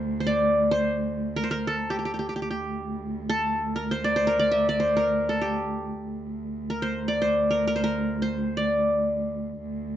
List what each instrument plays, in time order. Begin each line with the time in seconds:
Already playing: cello D2, qanun A#4 C5
0.20 qanun C5
0.27 qanun D5
0.71 qanun C5
1.36 qanun A#4
1.44 qanun C5
1.51 qanun A#4
1.67 qanun A4
1.90 qanun G4
1.99 qanun G4
2.05 qanun G4
2.14 qanun G4
2.19 qanun G4
2.29 qanun G4
2.36 qanun G4
2.40 cello D2, qanun G4
2.51 qanun G4
3.29 qanun A4
3.76 qanun A#4
3.91 qanun C5
4.04 qanun D5
4.16 qanun C5
4.27 qanun A#4
4.39 qanun D5
4.51 qanun E5
4.69 qanun D5
4.80 qanun C5
4.97 qanun A#4
5.29 qanun A4
5.41 qanun G4
6.02 cello D2
6.70 qanun A#4
6.82 qanun C5
7.08 qanun D5
7.22 qanun C5
7.51 qanun A#4
7.67 qanun A#4
7.76 qanun C5
7.84 qanun A#4
8.22 qanun C5
8.57 qanun D5
9.62 cello D2